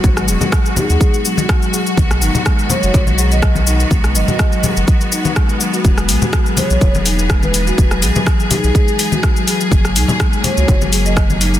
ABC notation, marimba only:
X:1
M:4/4
L:1/16
Q:"Swing 16ths" 1/4=124
K:Elyd
V:1 name="Marimba"
z F, G z3 D z G, z F, F z F, G z | z2 D z G, z F, F z F, G z3 D z | G, z F, F z F, G z3 D z3 F, F | G, z2 F z F, G F, z2 D z4 F |
z F, G F, z2 D z G, z2 F z F, G F, | z2 D z G, z2 F z F, G F, z2 D z |]